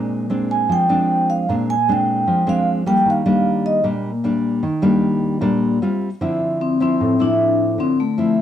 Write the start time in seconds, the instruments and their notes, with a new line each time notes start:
Already playing: nylon-string guitar A#2 G#3 C4 D4
0.30 nylon-string guitar G#3 C4 D4
0.51 vibraphone G#5
0.69 nylon-string guitar F3, vibraphone G5
0.89 nylon-string guitar G#3 C4 D4
1.30 vibraphone F5
1.49 nylon-string guitar A#2 G#3 C4 D4
1.70 vibraphone G#5
1.88 nylon-string guitar G#3 C4 D4, vibraphone G5
2.27 nylon-string guitar F3
2.47 nylon-string guitar G#3 C4 D4, vibraphone F5
2.86 nylon-string guitar G3 A#3 D4, vibraphone G5
3.05 nylon-string guitar D#3
3.10 vibraphone F5
3.26 nylon-string guitar G3 A#3 D4
3.66 vibraphone D#5
3.84 nylon-string guitar A#2 G3 A#3 D4
4.24 nylon-string guitar G3 A#3 D4
4.63 nylon-string guitar D#3
4.82 nylon-string guitar G3 A#3 D4
5.41 nylon-string guitar A#2 G3 A#3 D4
5.82 nylon-string guitar G3 C4 F4
6.21 nylon-string guitar D3 F3 C4 E4
6.61 vibraphone C4
6.80 nylon-string guitar F3 C4 E4, vibraphone C4
7.00 nylon-string guitar A2
7.19 nylon-string guitar F3 C4 E4, vibraphone D4
7.78 nylon-string guitar D3, vibraphone C4
8.00 vibraphone A3
8.18 nylon-string guitar F3 C4 E4